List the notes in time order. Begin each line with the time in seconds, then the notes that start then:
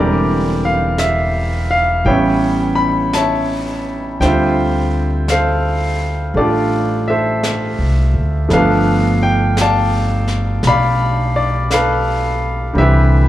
Already playing: E1 D3 E3 G3 C4 G4 A#4 D5
0.65 F5
0.98 E5, brush sweep, snare, hi-hat pedal
1.71 F5
2.05 A1 E3 G3 B3 C#5 E5 G5, brush sweep
2.10 C#4
2.75 B5
3.13 C#5 E5 A5, brush sweep, snare, hi-hat pedal
4.20 D2 D3 G3 C4 F4 C5 E5 G5, brush sweep, snare
5.28 A4 C5 F5, brush sweep, snare, hi-hat pedal
6.34 A1 A3 D4 G4 D5, brush sweep
6.39 F4 A4
7.08 A4 C5 E5
7.43 brush sweep, snare, hi-hat pedal
7.79 C2
8.14 D2
8.48 G1 F3 A3 B3, brush sweep, snare
8.53 D4 A4 B4 F5
9.23 G5
9.57 brush sweep, snare, hi-hat pedal
9.61 D5 F5 A5
10.28 snare
10.63 B1, brush sweep, snare
10.67 D5 F5 B5
11.36 D5
11.71 A4 B4 F5, brush sweep, snare, hi-hat pedal
12.73 C2 D3 G3 C4, brush sweep
12.78 E3 G4 B4 E5